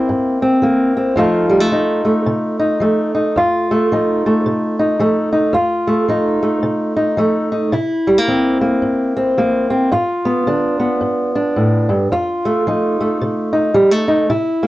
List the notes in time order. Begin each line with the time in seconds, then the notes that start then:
Already playing: A#3 C4 E4
0.09 G2
0.42 C4
0.62 E3 A#3
0.97 C4
1.16 F2 F3 A3 D#4 F4
1.50 G3
1.60 A3
1.72 F3 D#4
2.05 A3
2.26 C3
2.60 D#4
2.80 F3 A3
3.15 D#4
3.36 F2 F4
3.71 A3
3.92 F3 D#4
4.26 A3
4.46 C3
4.80 D#4
5.00 F3 A3
5.33 D#4
5.53 F2 F4
5.88 A3
6.09 F3 D#4
6.43 A3
6.63 C3
6.96 D#4
7.17 F3 A3
7.52 D#4
7.72 C3 E4
8.07 G3
8.18 A#3
8.28 E3 C4
8.61 A#3
8.82 G2
9.17 C4
9.38 E3 A#3
9.70 C4
9.91 G2 F4
10.25 B3
10.47 D3 D4
10.80 B3
11.01 G2
11.35 D4
11.56 A2
11.89 G2
12.12 F2 F4
12.45 A3
12.67 F3 D#4
13.01 A3
13.21 C3
13.53 D#4
13.74 F3 G3
13.91 A3
14.08 D#4
14.30 C3 E4
14.63 A#3